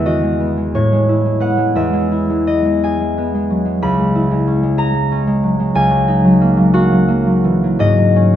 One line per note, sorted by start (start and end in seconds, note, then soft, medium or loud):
0.00 0.77 E2 medium
0.00 0.22 G#3 soft
0.00 0.39 B3 soft
0.00 1.08 E4 soft
0.00 3.25 B4 medium
0.00 1.75 E5 medium
0.06 0.77 F#4 soft
0.06 1.22 D#5 medium
0.23 0.56 G#3 soft
0.40 1.39 B3 soft
0.57 0.91 G#3 soft
0.75 1.79 A2 soft
0.75 1.78 C#5 medium
0.92 1.24 G#3 soft
1.09 2.10 E4 soft
1.25 1.56 G#3 soft
1.40 2.46 B3 soft
1.40 2.00 F#5 medium
1.57 1.92 G#3 soft
1.75 3.85 E2 medium
1.75 5.66 E5 medium
1.93 2.28 G#3 soft
2.12 4.14 E4 soft
2.29 2.64 G#3 soft
2.47 3.17 B3 soft
2.47 3.85 D#5 medium
2.65 2.99 G#3 soft
2.84 4.77 G#4 soft
2.84 5.74 G#5 medium
3.01 3.33 G#3 soft
3.18 5.77 B3 soft
3.35 3.64 G#3 soft
3.50 3.78 F#3 soft
3.65 3.98 G#3 soft
3.82 5.74 C#2 medium
3.82 5.78 B5 medium
3.99 4.30 G#3 soft
4.15 5.78 E4 soft
4.31 4.62 G#3 soft
4.47 5.10 C#4 soft
4.63 4.93 G#3 soft
4.78 5.78 G#4 soft
4.78 6.44 A#5 medium
4.94 5.26 G#3 soft
5.12 8.15 C#4 soft
5.27 5.58 G#3 soft
5.44 5.71 F#3 soft
5.60 5.78 G#3 soft
5.75 7.86 C#2 medium
5.75 7.50 G#5 medium
5.90 6.23 F#3 soft
6.08 8.36 D#4 soft
6.25 6.56 F#3 soft
6.41 6.72 A#3 soft
6.57 6.90 F#3 soft
6.73 7.07 A#3 soft
6.73 8.36 F#4 medium
6.92 7.25 F#3 soft
7.08 8.36 A#3 soft
7.27 7.62 F#3 soft
7.44 7.76 E3 soft
7.64 7.97 F#3 soft
7.79 8.36 G#2 medium
7.79 8.36 D#5 medium
7.98 8.32 F#3 soft
8.16 8.36 C#4 soft